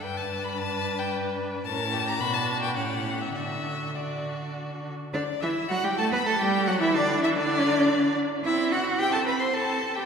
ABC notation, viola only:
X:1
M:3/4
L:1/16
Q:1/4=109
K:D
V:1 name="Viola"
D12 | C4 D4 C4 | D4 D6 z2 | [K:G] D,2 E,2 F, G, A, B, A, G,2 F, |
E, D,2 E, D,6 z2 | C4 C4 C4 |]